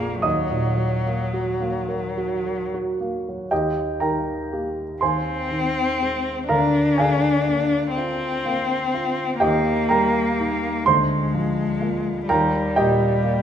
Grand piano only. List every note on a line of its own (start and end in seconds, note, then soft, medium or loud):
0.00 0.20 A#1 soft
0.00 0.27 F2 soft
0.00 0.27 G#3 soft
0.00 0.27 A#3 soft
0.00 0.13 F4 soft
0.00 0.24 G#4 soft
0.00 0.20 D5 medium
0.00 0.23 D6 medium
0.22 3.46 D#2 soft
0.22 2.94 D#5 soft
0.22 2.97 D#6 medium
0.50 0.95 A#2 soft
0.76 1.21 F#3 soft
1.06 1.50 A#3 soft
1.34 1.77 F#4 soft
1.60 2.04 A#3 soft
1.88 2.32 A#4 soft
2.18 2.61 F#4 soft
2.45 2.89 A#4 soft
2.74 3.16 F#4 soft
3.00 3.42 A#3 soft
3.29 3.53 F#3 soft
3.51 4.97 D#2 soft
3.51 3.98 G4 soft
3.51 3.98 D#5 soft
3.51 4.00 G5 medium
4.00 4.81 D#3 soft
4.00 4.97 A#4 soft
4.00 4.97 G5 soft
4.00 5.00 A#5 medium
4.53 4.98 A#3 soft
4.53 4.98 G4 soft
5.01 6.47 D#2 soft
5.01 6.47 C5 soft
5.01 6.47 G#5 soft
5.01 6.50 C6 medium
5.51 6.31 D#3 soft
6.02 6.47 G#3 soft
6.02 6.47 G#4 soft
6.49 9.38 D2 soft
6.49 6.95 A#4 soft
6.49 6.96 F5 soft
6.49 6.99 A#5 medium
6.98 7.78 D3 soft
6.98 9.38 G#4 soft
6.98 9.38 F5 soft
6.98 9.41 G#5 medium
7.49 8.26 A#3 soft
7.97 8.74 F4 soft
8.45 9.22 A#3 soft
8.94 9.42 F4 soft
9.40 10.82 D#2 soft
9.40 9.86 G4 medium
9.40 9.86 D#5 soft
9.40 9.89 G5 medium
9.89 10.67 G3 soft
9.89 10.82 A#4 medium
9.89 10.82 G5 soft
9.89 10.85 A#5 medium
10.39 10.82 A#3 soft
10.39 10.83 D#4 soft
10.86 12.26 D2 soft
10.86 12.26 C5 medium
10.86 12.30 C6 medium
11.34 12.11 F3 soft
11.81 12.25 A#3 soft
11.81 12.26 F4 soft
12.29 13.42 D#2 medium
12.29 12.74 A#4 medium
12.29 12.74 G5 medium
12.29 12.77 A#5 medium
12.76 13.42 A#2 soft
12.76 13.42 G4 medium
12.76 13.42 D#5 medium
12.76 13.42 G5 medium
13.24 13.42 A#3 soft